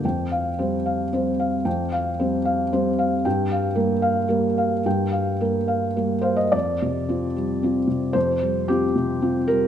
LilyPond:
<<
  \new Staff \with { instrumentName = "Felt piano" } { \time 3/4 \key f \mixolydian \tempo 4 = 111 << { g''8 f''8 c''8 f''8 c''8 f''8 | g''8 f''8 c''8 f''8 c''8 f''8 | g''8 f''8 bes'8 f''8 bes'8 f''8 | g''8 f''8 bes'8 f''8 bes'8 f''8 |
r2. | r2. | } \\ { r2. | r2. | r2. | r2 r8 c''16 ees''16 |
d''2. | c''4 g'4. bes'8 | } >> }
  \new Staff \with { instrumentName = "Felt piano" } { \clef bass \time 3/4 \key f \mixolydian f,4 <g c'>4 <g c'>4 | f,4 <g c'>4 <g c'>4 | g,4 <g bes>4 <g bes>4 | g,4 <g bes>4 <g bes>4 |
f,8 c8 <c' f'>8 g8 <c' f'>8 c8 | f,8 g8 <c' f'>8 c8 <c' f'>8 g8 | }
>>